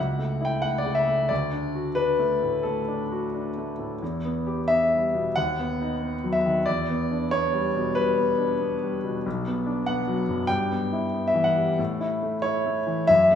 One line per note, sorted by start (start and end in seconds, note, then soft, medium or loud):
0.00 1.26 C#2 medium
0.00 0.46 F#5 medium
0.19 0.55 A3 soft
0.41 0.77 E4 soft
0.41 0.63 G5 medium
0.62 0.99 A3 soft
0.62 0.80 F#5 medium
0.78 0.96 D5 medium
0.85 1.21 C#3 soft
0.95 1.29 E5 medium
1.08 1.30 A3 soft
1.29 2.61 D2 medium
1.29 1.96 D5 medium
1.52 1.88 D4 soft
1.75 2.11 F#4 soft
1.95 2.33 D4 soft
1.95 2.64 B4 medium
2.19 2.56 A3 soft
2.42 2.79 A2 soft
2.63 3.02 A3 soft
2.63 4.00 A4 medium
2.88 3.25 D4 soft
3.12 3.48 F#4 soft
3.35 3.70 D4 soft
3.58 3.93 A3 soft
3.79 4.01 A2 soft
4.02 5.32 E2 medium
4.25 4.61 B3 medium
4.47 4.83 G4 soft
4.68 5.05 B3 soft
4.68 5.35 E5 loud
4.92 5.28 G3 soft
5.15 5.36 B2 soft
5.36 6.62 D#2 medium
5.36 6.33 F#5 loud
5.59 5.93 B3 soft
5.82 6.15 D#4 soft
6.02 6.36 B3 soft
6.24 6.58 F#3 soft
6.33 6.66 E5 medium
6.46 6.67 D#3 soft
6.66 7.92 E2 medium
6.66 7.31 D5 medium
6.90 7.24 B3 soft
7.11 7.45 D4 soft
7.31 7.66 B3 medium
7.31 7.95 C#5 loud
7.54 7.87 G3 medium
7.76 8.09 B2 soft
7.95 8.30 G3 soft
7.95 9.25 B4 medium
8.18 8.52 B3 soft
8.38 8.73 D4 soft
8.61 8.95 B3 soft
8.83 9.17 G3 soft
9.04 9.25 B2 soft
9.26 10.46 B1 medium
9.47 9.80 B3 soft
9.66 9.99 D4 medium
9.86 10.21 B3 medium
9.86 10.49 F#5 medium
10.08 10.41 F#3 medium
10.28 10.50 F#2 soft
10.47 11.75 G2 medium
10.47 11.29 G5 loud
10.71 11.06 B3 soft
10.93 11.27 E4 medium
11.13 11.48 B3 soft
11.28 11.45 E5 medium
11.34 11.70 E3 soft
11.44 11.78 F#5 medium
11.57 11.79 G3 medium
11.79 13.05 A2 medium
12.00 12.36 E4 medium
12.23 12.57 A3 soft
12.42 12.78 E4 medium
12.42 13.08 C#5 medium
12.66 13.01 A3 soft
12.87 13.09 E3 soft
13.07 13.35 F#2 medium
13.07 13.35 E5 loud
13.31 13.35 A3 soft